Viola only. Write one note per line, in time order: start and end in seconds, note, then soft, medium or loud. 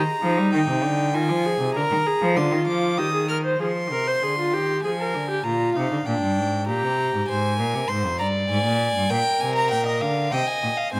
0.23 1.13 D#4 medium
1.15 1.47 F4 medium
1.45 1.78 G#4 medium
1.76 2.08 A#4 medium
2.07 2.37 G#4 medium
2.37 3.00 F4 medium
2.99 3.13 G4 medium
3.14 3.29 G#4 medium
3.29 3.44 A#4 medium
3.45 3.60 C5 medium
3.61 3.69 G#4 medium
3.92 4.09 A#4 medium
4.07 4.24 C5 medium
4.23 4.38 G#4 medium
4.38 4.55 F4 medium
4.53 4.84 G4 medium
4.84 4.90 G#4 medium
5.00 5.30 A#4 medium
5.30 5.45 G4 medium
5.46 5.78 F4 medium
5.76 6.06 D#4 medium
6.07 6.67 D4 medium
6.68 7.28 G4 medium
10.93 11.00 C4 medium